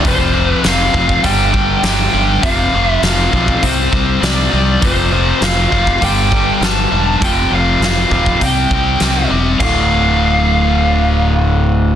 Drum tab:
CC |----------------|----------------|----------------|----------------|
HH |o---o---o---o---|o---o---o---o---|o---o---o---o---|o---o---o---o---|
SD |----o-------o---|----o-------o---|----o-------o---|----o-------o---|
BD |o-----ooo-o-----|o-----ooo-o-----|o-----ooo-o-----|o-----ooo-o-----|

CC |x---------------|
HH |----------------|
SD |----------------|
BD |o---------------|